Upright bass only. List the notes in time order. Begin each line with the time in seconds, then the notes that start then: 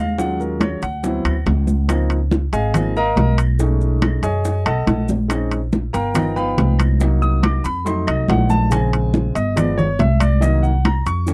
Already playing: D#2
0.82 D2
1.24 D2
1.46 C#2
2.52 G#1
3.16 B1
4.22 F#2
4.66 B1
4.87 A#1
5.94 G1
6.58 C2
7.65 F2
8.08 C2
8.28 A#1
9.36 G1
9.99 C2
11.06 F2